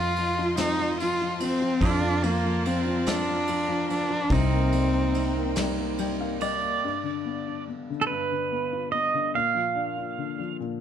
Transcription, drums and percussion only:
0.16 ride soft
0.57 snare medium
0.57 ride medium
1.00 ride medium
1.40 ride medium
1.81 kick medium
1.81 ride medium
2.23 ride medium
2.65 ride soft
3.06 snare medium
3.06 ride medium
3.47 ride medium
3.90 ride medium
4.30 kick medium
4.30 ride medium
4.72 ride soft
5.14 ride medium
5.56 snare medium
5.56 ride medium
5.98 ride medium
6.41 ride medium

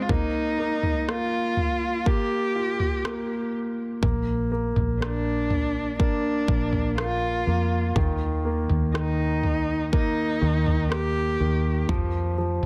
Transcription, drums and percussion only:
0.09 kick medium
0.09 floor tom medium
0.83 floor tom medium
1.09 cross-stick medium
1.57 floor tom medium
2.06 kick medium
2.80 floor tom soft
3.05 cross-stick medium
4.03 kick medium
4.03 floor tom medium
4.76 floor tom medium
5.02 cross-stick medium
5.50 floor tom medium
6.00 kick medium
6.48 kick medium
6.73 floor tom medium
6.98 cross-stick medium
7.96 kick medium
7.96 floor tom medium
8.70 floor tom medium
8.95 cross-stick medium
9.43 floor tom soft
9.93 kick medium
10.66 floor tom medium
10.92 cross-stick medium
11.89 kick medium
11.89 floor tom medium

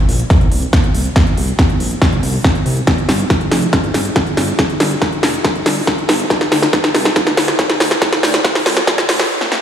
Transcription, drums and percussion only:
0.09 open hi-hat loud
0.20 closed hi-hat medium
0.30 kick loud
0.30 snare medium
0.30 closed hi-hat medium
0.41 closed hi-hat soft
0.52 open hi-hat loud
0.62 closed hi-hat soft
0.73 kick loud
0.73 snare medium
0.73 closed hi-hat soft
0.84 closed hi-hat soft
0.95 open hi-hat loud
1.05 closed hi-hat medium
1.16 kick loud
1.16 snare medium
1.16 closed hi-hat soft
1.27 closed hi-hat soft
1.37 open hi-hat loud
1.48 closed hi-hat soft
1.59 kick loud
1.59 snare medium
1.59 closed hi-hat soft
1.70 closed hi-hat soft
1.80 open hi-hat loud
1.91 closed hi-hat soft
2.02 kick loud
2.02 snare medium
2.02 closed hi-hat soft
2.12 closed hi-hat soft
2.23 open hi-hat loud
2.34 open hi-hat medium
2.44 kick loud
2.44 snare medium
2.55 closed hi-hat soft
2.66 open hi-hat loud
2.77 closed hi-hat soft
2.87 kick loud
2.87 snare medium
2.87 closed hi-hat soft
2.98 closed hi-hat soft
3.09 snare medium
3.09 open hi-hat loud
3.19 closed hi-hat soft
3.30 kick loud
3.30 snare medium
3.30 closed hi-hat soft
3.41 closed hi-hat soft
3.52 snare medium
3.52 open hi-hat loud
3.62 closed hi-hat soft
3.73 kick loud
3.73 snare medium
3.73 closed hi-hat soft
3.84 closed hi-hat soft
3.94 snare medium
3.94 open hi-hat loud
4.05 closed hi-hat soft
4.16 kick loud
4.16 snare medium
4.16 closed hi-hat soft
4.27 closed hi-hat soft
4.37 snare medium
4.37 open hi-hat loud
4.48 closed hi-hat soft
4.59 kick loud
4.59 snare medium
4.59 closed hi-hat medium
4.70 closed hi-hat soft
4.80 snare medium
4.80 open hi-hat loud
4.91 closed hi-hat medium
5.02 kick loud
5.02 snare medium
5.02 closed hi-hat soft
5.12 closed hi-hat soft
5.23 snare medium
5.23 open hi-hat loud
5.34 closed hi-hat medium
5.45 kick loud
5.45 snare medium
5.45 closed hi-hat medium
5.55 closed hi-hat soft
5.66 snare medium
5.66 open hi-hat loud
5.77 open hi-hat medium
5.87 kick loud
5.87 snare medium
5.87 closed hi-hat medium
5.98 closed hi-hat soft
6.09 snare medium
6.09 open hi-hat loud
6.20 closed hi-hat medium
6.30 kick loud
6.30 snare medium
6.30 closed hi-hat medium
6.41 snare medium
6.41 closed hi-hat soft
6.52 snare medium
6.52 open hi-hat loud
6.62 snare medium
6.62 closed hi-hat medium
6.73 kick loud
6.73 snare medium
6.73 closed hi-hat medium
6.84 snare medium
6.84 closed hi-hat soft
6.95 snare medium
6.95 open hi-hat loud
7.05 snare medium
7.05 closed hi-hat medium
7.16 kick loud
7.16 snare loud
7.16 closed hi-hat medium
7.27 snare medium
7.27 closed hi-hat soft
7.37 snare medium
7.37 open hi-hat loud
7.48 snare medium
7.59 kick loud
7.59 snare loud
7.59 closed hi-hat medium
7.70 snare medium
7.70 closed hi-hat soft
7.80 snare loud
7.80 open hi-hat loud
7.91 snare medium
7.91 closed hi-hat medium
8.02 kick loud
8.02 snare loud
8.02 closed hi-hat medium
8.13 snare medium
8.13 closed hi-hat soft
8.23 snare loud
8.23 open hi-hat loud
8.34 snare medium
8.34 closed hi-hat medium
8.44 kick loud
8.44 snare loud
8.44 closed hi-hat medium
8.55 snare medium
8.55 open hi-hat medium
8.66 snare loud
8.66 open hi-hat loud
8.77 snare medium
8.77 closed hi-hat medium
8.87 kick loud
8.87 snare loud
8.87 closed hi-hat medium
8.98 snare medium
8.98 closed hi-hat soft
9.09 snare loud
9.09 open hi-hat loud
9.20 snare medium
9.41 snare medium
9.52 snare medium

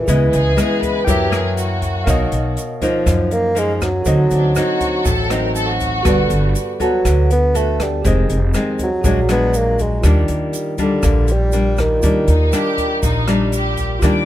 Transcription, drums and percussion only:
0.08 kick medium
0.08 closed hi-hat medium
0.08 shaker medium
0.33 closed hi-hat soft
0.33 shaker soft
0.58 cross-stick medium
0.58 closed hi-hat soft
0.58 shaker medium
0.82 kick soft
0.82 closed hi-hat soft
0.82 shaker soft
1.07 kick medium
1.07 closed hi-hat medium
1.07 shaker medium
1.33 cross-stick medium
1.33 closed hi-hat soft
1.33 shaker soft
1.57 closed hi-hat soft
1.57 shaker medium
1.82 kick soft
1.82 closed hi-hat soft
1.82 shaker soft
2.07 kick medium
2.07 cross-stick medium
2.07 closed hi-hat soft
2.07 shaker medium
2.32 closed hi-hat soft
2.32 shaker soft
2.57 closed hi-hat soft
2.57 shaker medium
2.81 kick soft
2.81 closed hi-hat soft
2.81 shaker soft
3.06 kick medium
3.06 cross-stick medium
3.06 closed hi-hat medium
3.06 shaker medium
3.31 closed hi-hat soft
3.31 shaker soft
3.56 closed hi-hat soft
3.56 shaker medium
3.81 kick soft
3.81 cross-stick medium
3.81 closed hi-hat soft
3.81 shaker soft
4.06 kick medium
4.06 closed hi-hat medium
4.06 shaker medium
4.31 closed hi-hat soft
4.31 shaker soft
4.55 cross-stick medium
4.55 closed hi-hat soft
4.55 shaker medium
4.81 kick soft
4.81 closed hi-hat soft
4.81 shaker soft
5.05 kick medium
5.05 closed hi-hat medium
5.05 shaker medium
5.30 cross-stick medium
5.30 closed hi-hat soft
5.30 shaker soft
5.55 closed hi-hat soft
5.55 shaker medium
5.80 kick soft
5.80 closed hi-hat soft
5.80 shaker soft
6.05 kick medium
6.05 cross-stick medium
6.05 closed hi-hat medium
6.05 shaker medium
6.30 closed hi-hat soft
6.30 shaker soft
6.55 closed hi-hat soft
6.55 shaker medium
6.80 kick soft
6.80 closed hi-hat soft
6.80 shaker soft
7.05 kick medium
7.05 cross-stick medium
7.05 closed hi-hat medium
7.05 shaker medium
7.31 closed hi-hat soft
7.31 shaker soft
7.55 closed hi-hat soft
7.55 shaker medium
7.80 kick soft
7.80 cross-stick medium
7.80 closed hi-hat soft
7.80 shaker soft
8.05 kick medium
8.05 closed hi-hat medium
8.05 shaker medium
8.30 closed hi-hat soft
8.30 shaker soft
8.54 cross-stick medium
8.54 closed hi-hat soft
8.54 shaker medium
8.79 kick soft
8.79 closed hi-hat soft
8.79 shaker soft
9.04 kick medium
9.04 closed hi-hat medium
9.04 shaker medium
9.29 cross-stick medium
9.29 closed hi-hat soft
9.29 shaker soft
9.54 closed hi-hat soft
9.54 shaker medium
9.79 kick soft
9.79 closed hi-hat soft
9.79 shaker soft
10.03 kick medium
10.03 cross-stick medium
10.03 closed hi-hat medium
10.03 shaker medium
10.28 closed hi-hat soft
10.28 shaker soft
10.53 closed hi-hat soft
10.53 shaker medium
10.78 kick soft
10.78 closed hi-hat soft
10.78 shaker soft
11.03 kick medium
11.03 cross-stick medium
11.03 closed hi-hat medium
11.03 shaker medium
11.28 closed hi-hat soft
11.28 shaker soft
11.52 closed hi-hat soft
11.52 shaker medium
11.77 kick soft
11.77 cross-stick medium
11.77 closed hi-hat soft
11.77 shaker soft
12.02 kick medium
12.02 closed hi-hat medium
12.02 shaker medium
12.28 closed hi-hat soft
12.28 shaker soft
12.53 cross-stick medium
12.53 closed hi-hat soft
12.53 shaker medium
12.78 kick soft
12.78 closed hi-hat soft
12.78 shaker soft
13.03 kick medium
13.03 closed hi-hat medium
13.03 shaker medium
13.28 cross-stick medium
13.28 closed hi-hat soft
13.28 shaker soft
13.52 closed hi-hat soft
13.52 shaker medium
13.77 kick soft
13.77 closed hi-hat soft
13.77 shaker soft
14.02 kick medium
14.02 cross-stick medium
14.02 closed hi-hat medium
14.02 shaker medium

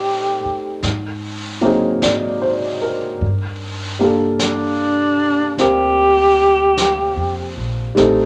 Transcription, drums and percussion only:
0.83 brush sweep soft
0.83 snare soft
2.02 brush sweep soft
2.02 snare soft
2.02 hi-hat pedal soft
3.21 brush sweep soft
4.39 brush sweep soft
4.39 snare soft
4.39 hi-hat pedal soft
5.58 brush sweep soft
5.58 snare soft
6.77 brush sweep soft
6.77 snare soft
6.77 hi-hat pedal soft
7.97 brush sweep soft
7.97 snare soft

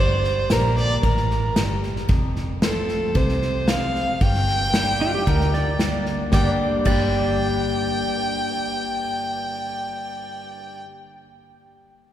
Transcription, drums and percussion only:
0.24 snare soft
0.50 snare medium
0.50 hi-hat pedal medium
0.77 snare soft
1.03 kick loud
1.03 snare soft
1.17 snare soft
1.31 snare soft
1.56 snare loud
1.56 hi-hat pedal medium
1.83 snare soft
1.96 snare soft
2.09 kick loud
2.09 snare soft
2.36 snare soft
2.62 snare loud
2.62 hi-hat pedal medium
2.88 snare soft
3.15 kick loud
3.15 snare soft
3.29 snare soft
3.42 snare soft
3.68 snare loud
3.68 hi-hat pedal medium
3.95 snare soft
4.21 kick loud
4.21 snare soft
4.34 snare soft
4.47 snare soft
4.74 snare loud
4.74 hi-hat pedal medium
5.00 snare soft
5.27 kick loud
5.27 snare soft
5.40 snare soft
5.53 snare soft
5.79 snare medium
5.79 hi-hat pedal medium
6.06 snare soft
6.32 kick loud
6.32 snare medium
6.85 kick loud
6.85 crash medium

